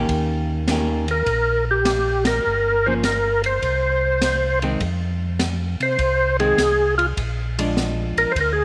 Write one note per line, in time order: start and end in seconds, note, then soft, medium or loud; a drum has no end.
0.00 0.65 D#3 medium
0.00 0.65 A#3 medium
0.00 0.65 C#4 medium
0.00 0.65 G4 medium
0.08 1.23 D#2 medium
0.08 kick soft
0.08 ride medium
0.68 1.05 D#3 medium
0.68 1.05 A#3 medium
0.68 1.05 C#4 medium
0.68 1.06 G4 medium
0.68 snare medium
0.68 hi-hat pedal medium
0.68 ride medium
1.08 1.65 A#4 medium
1.08 ride soft
1.26 2.41 A#1 medium
1.26 kick soft
1.26 ride soft
1.71 2.24 G4 medium
1.85 snare medium
1.85 hi-hat pedal soft
1.85 ride medium
2.25 2.87 A#4 medium
2.25 snare medium
2.25 ride medium
2.46 3.59 G1 medium
2.86 3.03 F3 soft
2.86 3.03 A#3 medium
2.86 3.03 C#4 medium
2.86 2.94 C5 loud
3.03 3.42 A#4 medium
3.03 snare medium
3.03 hi-hat pedal medium
3.03 ride medium
3.44 4.59 C5 medium
3.44 ride soft
3.62 4.77 C2 medium
3.62 kick soft
3.62 ride soft
4.21 snare medium
4.21 hi-hat pedal medium
4.21 ride medium
4.62 4.79 D#3 medium
4.62 4.80 G#3 medium
4.62 4.80 C4 medium
4.62 ride soft
4.80 5.76 F2 medium
4.80 kick soft
4.80 ride soft
5.39 snare medium
5.39 hi-hat pedal soft
5.39 ride medium
5.80 5.97 C3 medium
5.80 6.37 C5 medium
5.80 ride soft
5.98 6.54 C2 medium
5.98 kick soft
5.98 ride soft
6.39 6.56 D#3 medium
6.39 6.56 G#3 medium
6.39 6.57 C4 medium
6.39 6.95 G#4 loud
6.39 ride soft
6.58 7.13 C2 medium
6.58 snare medium
6.58 hi-hat pedal medium
6.58 ride medium
6.98 7.06 F4 medium
6.98 ride soft
7.17 8.13 A#1 medium
7.17 kick soft
7.17 ride medium
7.59 8.32 F3 medium
7.59 8.33 G#3 medium
7.59 8.33 D4 medium
7.59 ride medium
7.77 snare medium
7.77 hi-hat pedal medium
8.17 8.26 A#1 soft
8.17 8.32 A#4 loud
8.17 ride soft
8.32 8.65 D2 medium
8.32 8.39 C5 medium
8.32 kick soft
8.36 ride medium
8.41 8.52 A#4 medium
8.53 8.65 G#4 medium